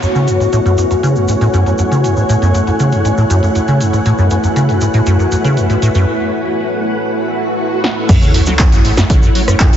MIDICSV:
0, 0, Header, 1, 7, 480
1, 0, Start_track
1, 0, Key_signature, 3, "minor"
1, 0, Tempo, 504202
1, 23, Time_signature, 4, 2, 24, 8
1, 9300, End_track
2, 0, Start_track
2, 0, Title_t, "String machine"
2, 0, Program_c, 0, 50
2, 23, Note_on_c, 0, 57, 74
2, 23, Note_on_c, 0, 64, 68
2, 23, Note_on_c, 0, 73, 72
2, 24, Note_on_c, 0, 78, 85
2, 3825, Note_off_c, 0, 73, 0
2, 3863, Note_on_c, 0, 71, 67
2, 7665, Note_off_c, 0, 57, 0
2, 7665, Note_off_c, 0, 64, 0
2, 7665, Note_off_c, 0, 71, 0
2, 7665, Note_off_c, 0, 78, 0
2, 7703, Note_on_c, 0, 57, 82
2, 7703, Note_on_c, 0, 64, 74
2, 7703, Note_on_c, 0, 73, 79
2, 7703, Note_on_c, 0, 78, 92
2, 9300, Note_off_c, 0, 57, 0
2, 9300, Note_off_c, 0, 64, 0
2, 9300, Note_off_c, 0, 73, 0
2, 9300, Note_off_c, 0, 78, 0
2, 9300, End_track
3, 0, Start_track
3, 0, Title_t, "Ambient pad"
3, 0, Program_c, 1, 92
3, 0, Note_on_c, 1, 59, 80
3, 0, Note_on_c, 1, 66, 94
3, 0, Note_on_c, 1, 73, 85
3, 94, Note_on_c, 1, 80, 81
3, 1807, Note_off_c, 1, 59, 0
3, 5783, Note_off_c, 1, 66, 0
3, 5783, Note_off_c, 1, 73, 0
3, 5783, Note_off_c, 1, 80, 0
3, 9300, End_track
4, 0, Start_track
4, 0, Title_t, "Acid bass"
4, 0, Program_c, 2, 38
4, 23, Note_on_c, 2, 42, 82
4, 63, Note_off_c, 2, 42, 0
4, 144, Note_on_c, 2, 49, 95
4, 263, Note_on_c, 2, 42, 74
4, 277, Note_off_c, 2, 49, 0
4, 363, Note_off_c, 2, 42, 0
4, 384, Note_on_c, 2, 44, 76
4, 449, Note_off_c, 2, 44, 0
4, 503, Note_on_c, 2, 45, 98
4, 569, Note_off_c, 2, 45, 0
4, 624, Note_on_c, 2, 42, 93
4, 722, Note_off_c, 2, 42, 0
4, 742, Note_on_c, 2, 42, 75
4, 809, Note_off_c, 2, 42, 0
4, 863, Note_on_c, 2, 42, 73
4, 903, Note_off_c, 2, 42, 0
4, 983, Note_on_c, 2, 49, 102
4, 1104, Note_on_c, 2, 42, 74
4, 1118, Note_off_c, 2, 49, 0
4, 1202, Note_off_c, 2, 42, 0
4, 1222, Note_on_c, 2, 44, 72
4, 1289, Note_off_c, 2, 44, 0
4, 1343, Note_on_c, 2, 45, 104
4, 1409, Note_off_c, 2, 45, 0
4, 1462, Note_on_c, 2, 42, 102
4, 1562, Note_off_c, 2, 42, 0
4, 1583, Note_on_c, 2, 42, 74
4, 1649, Note_off_c, 2, 42, 0
4, 1702, Note_on_c, 2, 42, 74
4, 1742, Note_off_c, 2, 42, 0
4, 1823, Note_on_c, 2, 49, 94
4, 1943, Note_on_c, 2, 42, 83
4, 1957, Note_off_c, 2, 49, 0
4, 2042, Note_off_c, 2, 42, 0
4, 2064, Note_on_c, 2, 44, 66
4, 2129, Note_off_c, 2, 44, 0
4, 2182, Note_on_c, 2, 45, 96
4, 2249, Note_off_c, 2, 45, 0
4, 2304, Note_on_c, 2, 42, 99
4, 2402, Note_off_c, 2, 42, 0
4, 2422, Note_on_c, 2, 42, 83
4, 2489, Note_off_c, 2, 42, 0
4, 2543, Note_on_c, 2, 42, 75
4, 2583, Note_off_c, 2, 42, 0
4, 2663, Note_on_c, 2, 49, 99
4, 2783, Note_on_c, 2, 42, 72
4, 2797, Note_off_c, 2, 49, 0
4, 2882, Note_off_c, 2, 42, 0
4, 2902, Note_on_c, 2, 44, 79
4, 2969, Note_off_c, 2, 44, 0
4, 3023, Note_on_c, 2, 45, 99
4, 3089, Note_off_c, 2, 45, 0
4, 3142, Note_on_c, 2, 42, 92
4, 3242, Note_off_c, 2, 42, 0
4, 3264, Note_on_c, 2, 42, 75
4, 3329, Note_off_c, 2, 42, 0
4, 3383, Note_on_c, 2, 42, 74
4, 3423, Note_off_c, 2, 42, 0
4, 3504, Note_on_c, 2, 49, 98
4, 3622, Note_on_c, 2, 42, 73
4, 3637, Note_off_c, 2, 49, 0
4, 3722, Note_off_c, 2, 42, 0
4, 3743, Note_on_c, 2, 44, 70
4, 3809, Note_off_c, 2, 44, 0
4, 3862, Note_on_c, 2, 45, 98
4, 3929, Note_off_c, 2, 45, 0
4, 3983, Note_on_c, 2, 42, 93
4, 4082, Note_off_c, 2, 42, 0
4, 4103, Note_on_c, 2, 42, 77
4, 4169, Note_off_c, 2, 42, 0
4, 4223, Note_on_c, 2, 42, 75
4, 4263, Note_off_c, 2, 42, 0
4, 4342, Note_on_c, 2, 49, 104
4, 4463, Note_on_c, 2, 42, 72
4, 4477, Note_off_c, 2, 49, 0
4, 4562, Note_off_c, 2, 42, 0
4, 4582, Note_on_c, 2, 44, 76
4, 4649, Note_off_c, 2, 44, 0
4, 4703, Note_on_c, 2, 45, 99
4, 4769, Note_off_c, 2, 45, 0
4, 4822, Note_on_c, 2, 42, 102
4, 4922, Note_off_c, 2, 42, 0
4, 4943, Note_on_c, 2, 42, 70
4, 5009, Note_off_c, 2, 42, 0
4, 5062, Note_on_c, 2, 42, 71
4, 5102, Note_off_c, 2, 42, 0
4, 5183, Note_on_c, 2, 49, 98
4, 5302, Note_on_c, 2, 42, 81
4, 5316, Note_off_c, 2, 49, 0
4, 5402, Note_off_c, 2, 42, 0
4, 5423, Note_on_c, 2, 44, 75
4, 5489, Note_off_c, 2, 44, 0
4, 5542, Note_on_c, 2, 45, 97
4, 5609, Note_off_c, 2, 45, 0
4, 5663, Note_on_c, 2, 42, 98
4, 5762, Note_off_c, 2, 42, 0
4, 7702, Note_on_c, 2, 42, 102
4, 7769, Note_off_c, 2, 42, 0
4, 7823, Note_on_c, 2, 49, 74
4, 7922, Note_off_c, 2, 49, 0
4, 7942, Note_on_c, 2, 42, 76
4, 8009, Note_off_c, 2, 42, 0
4, 8063, Note_on_c, 2, 54, 81
4, 8129, Note_off_c, 2, 54, 0
4, 8182, Note_on_c, 2, 42, 89
4, 8249, Note_off_c, 2, 42, 0
4, 8303, Note_on_c, 2, 42, 74
4, 8401, Note_off_c, 2, 42, 0
4, 8423, Note_on_c, 2, 44, 78
4, 8489, Note_off_c, 2, 44, 0
4, 8543, Note_on_c, 2, 42, 97
4, 8609, Note_off_c, 2, 42, 0
4, 8662, Note_on_c, 2, 49, 89
4, 8762, Note_off_c, 2, 49, 0
4, 8783, Note_on_c, 2, 42, 78
4, 8849, Note_off_c, 2, 42, 0
4, 8903, Note_on_c, 2, 54, 79
4, 8969, Note_off_c, 2, 54, 0
4, 9023, Note_on_c, 2, 42, 82
4, 9089, Note_off_c, 2, 42, 0
4, 9143, Note_on_c, 2, 42, 78
4, 9242, Note_off_c, 2, 42, 0
4, 9263, Note_on_c, 2, 44, 78
4, 9300, Note_off_c, 2, 44, 0
4, 9300, End_track
5, 0, Start_track
5, 0, Title_t, "Sub drop"
5, 0, Program_c, 3, 103
5, 7703, Note_on_c, 3, 60, 74
5, 9300, Note_off_c, 3, 60, 0
5, 9300, End_track
6, 0, Start_track
6, 0, Title_t, "Swell"
6, 0, Program_c, 4, 103
6, 6743, Note_on_c, 4, 60, 70
6, 7703, Note_off_c, 4, 60, 0
6, 9300, End_track
7, 0, Start_track
7, 0, Title_t, "Drums"
7, 23, Note_on_c, 9, 42, 77
7, 23, Note_on_c, 9, 82, 49
7, 118, Note_off_c, 9, 42, 0
7, 119, Note_off_c, 9, 82, 0
7, 146, Note_on_c, 9, 82, 24
7, 241, Note_off_c, 9, 82, 0
7, 263, Note_on_c, 9, 42, 78
7, 263, Note_on_c, 9, 82, 87
7, 358, Note_off_c, 9, 42, 0
7, 359, Note_off_c, 9, 82, 0
7, 384, Note_on_c, 9, 42, 50
7, 390, Note_on_c, 9, 82, 34
7, 479, Note_off_c, 9, 42, 0
7, 485, Note_off_c, 9, 82, 0
7, 502, Note_on_c, 9, 82, 54
7, 503, Note_on_c, 9, 42, 78
7, 597, Note_off_c, 9, 82, 0
7, 598, Note_off_c, 9, 42, 0
7, 624, Note_on_c, 9, 42, 36
7, 628, Note_on_c, 9, 82, 22
7, 719, Note_off_c, 9, 42, 0
7, 723, Note_off_c, 9, 82, 0
7, 740, Note_on_c, 9, 82, 82
7, 743, Note_on_c, 9, 42, 76
7, 835, Note_off_c, 9, 82, 0
7, 838, Note_off_c, 9, 42, 0
7, 864, Note_on_c, 9, 42, 49
7, 865, Note_on_c, 9, 82, 36
7, 959, Note_off_c, 9, 42, 0
7, 960, Note_off_c, 9, 82, 0
7, 983, Note_on_c, 9, 42, 76
7, 987, Note_on_c, 9, 82, 46
7, 1078, Note_off_c, 9, 42, 0
7, 1082, Note_off_c, 9, 82, 0
7, 1102, Note_on_c, 9, 82, 26
7, 1197, Note_off_c, 9, 82, 0
7, 1220, Note_on_c, 9, 82, 91
7, 1223, Note_on_c, 9, 42, 71
7, 1315, Note_off_c, 9, 82, 0
7, 1318, Note_off_c, 9, 42, 0
7, 1344, Note_on_c, 9, 42, 49
7, 1344, Note_on_c, 9, 82, 34
7, 1439, Note_off_c, 9, 42, 0
7, 1440, Note_off_c, 9, 82, 0
7, 1463, Note_on_c, 9, 42, 76
7, 1463, Note_on_c, 9, 82, 46
7, 1558, Note_off_c, 9, 42, 0
7, 1558, Note_off_c, 9, 82, 0
7, 1584, Note_on_c, 9, 42, 33
7, 1587, Note_on_c, 9, 82, 24
7, 1679, Note_off_c, 9, 42, 0
7, 1682, Note_off_c, 9, 82, 0
7, 1699, Note_on_c, 9, 82, 90
7, 1703, Note_on_c, 9, 42, 73
7, 1794, Note_off_c, 9, 82, 0
7, 1798, Note_off_c, 9, 42, 0
7, 1824, Note_on_c, 9, 42, 50
7, 1827, Note_on_c, 9, 82, 39
7, 1919, Note_off_c, 9, 42, 0
7, 1922, Note_off_c, 9, 82, 0
7, 1943, Note_on_c, 9, 42, 78
7, 1945, Note_on_c, 9, 82, 48
7, 2039, Note_off_c, 9, 42, 0
7, 2041, Note_off_c, 9, 82, 0
7, 2062, Note_on_c, 9, 82, 26
7, 2157, Note_off_c, 9, 82, 0
7, 2183, Note_on_c, 9, 42, 78
7, 2184, Note_on_c, 9, 82, 88
7, 2278, Note_off_c, 9, 42, 0
7, 2279, Note_off_c, 9, 82, 0
7, 2304, Note_on_c, 9, 42, 52
7, 2308, Note_on_c, 9, 82, 35
7, 2400, Note_off_c, 9, 42, 0
7, 2403, Note_off_c, 9, 82, 0
7, 2423, Note_on_c, 9, 42, 72
7, 2423, Note_on_c, 9, 82, 54
7, 2518, Note_off_c, 9, 42, 0
7, 2518, Note_off_c, 9, 82, 0
7, 2542, Note_on_c, 9, 82, 22
7, 2544, Note_on_c, 9, 42, 33
7, 2637, Note_off_c, 9, 82, 0
7, 2640, Note_off_c, 9, 42, 0
7, 2663, Note_on_c, 9, 42, 70
7, 2663, Note_on_c, 9, 82, 86
7, 2758, Note_off_c, 9, 42, 0
7, 2758, Note_off_c, 9, 82, 0
7, 2779, Note_on_c, 9, 82, 36
7, 2784, Note_on_c, 9, 42, 51
7, 2874, Note_off_c, 9, 82, 0
7, 2879, Note_off_c, 9, 42, 0
7, 2903, Note_on_c, 9, 42, 76
7, 2905, Note_on_c, 9, 82, 53
7, 2998, Note_off_c, 9, 42, 0
7, 3001, Note_off_c, 9, 82, 0
7, 3022, Note_on_c, 9, 82, 27
7, 3117, Note_off_c, 9, 82, 0
7, 3143, Note_on_c, 9, 42, 69
7, 3146, Note_on_c, 9, 82, 83
7, 3238, Note_off_c, 9, 42, 0
7, 3242, Note_off_c, 9, 82, 0
7, 3264, Note_on_c, 9, 42, 48
7, 3270, Note_on_c, 9, 82, 33
7, 3359, Note_off_c, 9, 42, 0
7, 3366, Note_off_c, 9, 82, 0
7, 3381, Note_on_c, 9, 82, 49
7, 3383, Note_on_c, 9, 42, 73
7, 3476, Note_off_c, 9, 82, 0
7, 3478, Note_off_c, 9, 42, 0
7, 3500, Note_on_c, 9, 82, 25
7, 3504, Note_on_c, 9, 42, 33
7, 3595, Note_off_c, 9, 82, 0
7, 3599, Note_off_c, 9, 42, 0
7, 3623, Note_on_c, 9, 42, 70
7, 3626, Note_on_c, 9, 82, 96
7, 3718, Note_off_c, 9, 42, 0
7, 3721, Note_off_c, 9, 82, 0
7, 3744, Note_on_c, 9, 42, 46
7, 3745, Note_on_c, 9, 82, 41
7, 3839, Note_off_c, 9, 42, 0
7, 3840, Note_off_c, 9, 82, 0
7, 3860, Note_on_c, 9, 82, 51
7, 3863, Note_on_c, 9, 42, 73
7, 3955, Note_off_c, 9, 82, 0
7, 3958, Note_off_c, 9, 42, 0
7, 3981, Note_on_c, 9, 82, 22
7, 4076, Note_off_c, 9, 82, 0
7, 4098, Note_on_c, 9, 82, 87
7, 4102, Note_on_c, 9, 42, 76
7, 4193, Note_off_c, 9, 82, 0
7, 4198, Note_off_c, 9, 42, 0
7, 4224, Note_on_c, 9, 42, 48
7, 4224, Note_on_c, 9, 82, 43
7, 4319, Note_off_c, 9, 42, 0
7, 4319, Note_off_c, 9, 82, 0
7, 4342, Note_on_c, 9, 42, 72
7, 4346, Note_on_c, 9, 82, 50
7, 4438, Note_off_c, 9, 42, 0
7, 4441, Note_off_c, 9, 82, 0
7, 4464, Note_on_c, 9, 42, 34
7, 4467, Note_on_c, 9, 82, 24
7, 4559, Note_off_c, 9, 42, 0
7, 4562, Note_off_c, 9, 82, 0
7, 4579, Note_on_c, 9, 82, 92
7, 4583, Note_on_c, 9, 42, 71
7, 4674, Note_off_c, 9, 82, 0
7, 4678, Note_off_c, 9, 42, 0
7, 4699, Note_on_c, 9, 82, 40
7, 4704, Note_on_c, 9, 42, 48
7, 4795, Note_off_c, 9, 82, 0
7, 4799, Note_off_c, 9, 42, 0
7, 4820, Note_on_c, 9, 82, 53
7, 4823, Note_on_c, 9, 42, 74
7, 4915, Note_off_c, 9, 82, 0
7, 4918, Note_off_c, 9, 42, 0
7, 4946, Note_on_c, 9, 82, 26
7, 5041, Note_off_c, 9, 82, 0
7, 5061, Note_on_c, 9, 82, 90
7, 5063, Note_on_c, 9, 42, 65
7, 5156, Note_off_c, 9, 82, 0
7, 5158, Note_off_c, 9, 42, 0
7, 5184, Note_on_c, 9, 42, 47
7, 5185, Note_on_c, 9, 82, 41
7, 5279, Note_off_c, 9, 42, 0
7, 5280, Note_off_c, 9, 82, 0
7, 5303, Note_on_c, 9, 42, 69
7, 5305, Note_on_c, 9, 82, 52
7, 5398, Note_off_c, 9, 42, 0
7, 5400, Note_off_c, 9, 82, 0
7, 5424, Note_on_c, 9, 42, 33
7, 5426, Note_on_c, 9, 82, 27
7, 5519, Note_off_c, 9, 42, 0
7, 5521, Note_off_c, 9, 82, 0
7, 5543, Note_on_c, 9, 42, 71
7, 5546, Note_on_c, 9, 82, 93
7, 5638, Note_off_c, 9, 42, 0
7, 5641, Note_off_c, 9, 82, 0
7, 5659, Note_on_c, 9, 82, 37
7, 5664, Note_on_c, 9, 42, 46
7, 5754, Note_off_c, 9, 82, 0
7, 5759, Note_off_c, 9, 42, 0
7, 7463, Note_on_c, 9, 38, 82
7, 7558, Note_off_c, 9, 38, 0
7, 7703, Note_on_c, 9, 36, 117
7, 7703, Note_on_c, 9, 42, 82
7, 7703, Note_on_c, 9, 49, 106
7, 7704, Note_on_c, 9, 82, 71
7, 7798, Note_off_c, 9, 36, 0
7, 7798, Note_off_c, 9, 42, 0
7, 7798, Note_off_c, 9, 49, 0
7, 7799, Note_off_c, 9, 82, 0
7, 7826, Note_on_c, 9, 82, 36
7, 7921, Note_off_c, 9, 82, 0
7, 7943, Note_on_c, 9, 46, 115
7, 8038, Note_off_c, 9, 46, 0
7, 8054, Note_on_c, 9, 82, 74
7, 8064, Note_on_c, 9, 38, 37
7, 8064, Note_on_c, 9, 42, 55
7, 8150, Note_off_c, 9, 82, 0
7, 8159, Note_off_c, 9, 38, 0
7, 8159, Note_off_c, 9, 42, 0
7, 8178, Note_on_c, 9, 39, 124
7, 8183, Note_on_c, 9, 36, 122
7, 8183, Note_on_c, 9, 42, 81
7, 8184, Note_on_c, 9, 82, 73
7, 8273, Note_off_c, 9, 39, 0
7, 8278, Note_off_c, 9, 36, 0
7, 8278, Note_off_c, 9, 42, 0
7, 8279, Note_off_c, 9, 82, 0
7, 8304, Note_on_c, 9, 42, 39
7, 8310, Note_on_c, 9, 82, 37
7, 8399, Note_off_c, 9, 42, 0
7, 8406, Note_off_c, 9, 82, 0
7, 8423, Note_on_c, 9, 46, 106
7, 8518, Note_off_c, 9, 46, 0
7, 8544, Note_on_c, 9, 38, 85
7, 8544, Note_on_c, 9, 42, 54
7, 8544, Note_on_c, 9, 82, 70
7, 8639, Note_off_c, 9, 38, 0
7, 8639, Note_off_c, 9, 42, 0
7, 8639, Note_off_c, 9, 82, 0
7, 8663, Note_on_c, 9, 36, 116
7, 8663, Note_on_c, 9, 42, 86
7, 8668, Note_on_c, 9, 82, 58
7, 8758, Note_off_c, 9, 36, 0
7, 8758, Note_off_c, 9, 42, 0
7, 8764, Note_off_c, 9, 82, 0
7, 8784, Note_on_c, 9, 82, 39
7, 8879, Note_off_c, 9, 82, 0
7, 8903, Note_on_c, 9, 46, 105
7, 8998, Note_off_c, 9, 46, 0
7, 9024, Note_on_c, 9, 37, 65
7, 9024, Note_on_c, 9, 42, 58
7, 9031, Note_on_c, 9, 82, 81
7, 9119, Note_off_c, 9, 37, 0
7, 9119, Note_off_c, 9, 42, 0
7, 9126, Note_off_c, 9, 82, 0
7, 9138, Note_on_c, 9, 39, 120
7, 9143, Note_on_c, 9, 36, 112
7, 9143, Note_on_c, 9, 42, 81
7, 9143, Note_on_c, 9, 82, 59
7, 9233, Note_off_c, 9, 39, 0
7, 9238, Note_off_c, 9, 36, 0
7, 9238, Note_off_c, 9, 42, 0
7, 9238, Note_off_c, 9, 82, 0
7, 9264, Note_on_c, 9, 42, 37
7, 9265, Note_on_c, 9, 82, 40
7, 9300, Note_off_c, 9, 42, 0
7, 9300, Note_off_c, 9, 82, 0
7, 9300, End_track
0, 0, End_of_file